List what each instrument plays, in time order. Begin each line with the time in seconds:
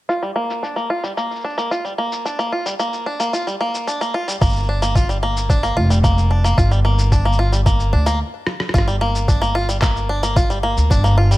0.09 five-string banjo F4, shaker
0.23 five-string banjo G3, shaker
0.36 five-string banjo A#3
0.50 shaker
0.63 five-string banjo D4, shaker
0.76 five-string banjo A#3, shaker
0.90 five-string banjo F4
1.04 five-string banjo G3, shaker
1.17 five-string banjo A#3, shaker
1.31 shaker
1.36 shaker
1.40 shaker
1.44 five-string banjo D4, shaker
1.49 shaker
1.54 shaker
1.58 five-string banjo A#3, shaker
1.71 five-string banjo F4, shaker
1.85 five-string banjo G3, shaker
1.98 five-string banjo A#3
2.12 shaker
2.25 five-string banjo D4, shaker
2.39 five-string banjo A#3, shaker
2.52 five-string banjo F4
2.66 five-string banjo G3, shaker
2.79 five-string banjo A#3, shaker
2.93 shaker
3.06 five-string banjo D4
3.20 five-string banjo A#3, shaker
3.33 five-string banjo F4, shaker
3.47 five-string banjo G3, shaker
3.61 five-string banjo A#3
3.74 shaker
3.87 five-string banjo D4, shaker
4.01 five-string banjo A#3, shaker
4.14 five-string banjo F4
4.28 five-string banjo G3, shaker
4.41 upright bass G1, five-string banjo A#3, kick, shaker
4.46 shaker
4.49 shaker
4.52 shaker
4.56 shaker
4.59 shaker
4.66 five-string banjo D4, shaker
4.82 five-string banjo A#3, shaker
4.95 five-string banjo F4, kick, shaker
5.09 five-string banjo G3, shaker
5.23 five-string banjo A#3
5.37 shaker
5.49 five-string banjo D4, kick, shaker
5.63 five-string banjo A#3, shaker
5.76 upright bass F1, five-string banjo F4
5.90 five-string banjo G3, shaker
6.03 five-string banjo A#3, kick, shaker
6.18 shaker
6.31 five-string banjo D4
6.44 five-string banjo A#3, shaker
6.57 upright bass G1, five-string banjo F4, kick, shaker
6.71 five-string banjo G3, shaker
6.85 five-string banjo A#3
6.99 shaker
7.12 five-string banjo D4, kick, shaker
7.25 five-string banjo A#3
7.33 shaker
7.39 five-string banjo F4
7.52 five-string banjo G3, shaker
7.66 five-string banjo A#3, kick, shaker
7.80 shaker
7.93 upright bass D2, five-string banjo D4
8.06 five-string banjo A#3, shaker
8.47 cross-stick
8.60 cross-stick
8.69 cross-stick
8.74 upright bass G1, five-string banjo F4, kick, shaker
8.78 cross-stick
8.88 five-string banjo G3, shaker
9.01 five-string banjo A#3
9.15 shaker
9.28 five-string banjo D4, kick, shaker
9.42 five-string banjo A#3, shaker
9.55 five-string banjo F4
9.69 five-string banjo G3, shaker
9.82 five-string banjo A#3, kick, clap, shaker
9.96 shaker
10.09 five-string banjo D4
10.23 five-string banjo A#3, shaker
10.36 five-string banjo F4, kick, shaker
10.50 five-string banjo G3, shaker
10.63 five-string banjo A#3
10.77 upright bass D2, shaker
10.90 upright bass G1, five-string banjo D4, kick, shaker
11.04 five-string banjo A#3, shaker
11.18 five-string banjo F4
11.31 five-string banjo G3, shaker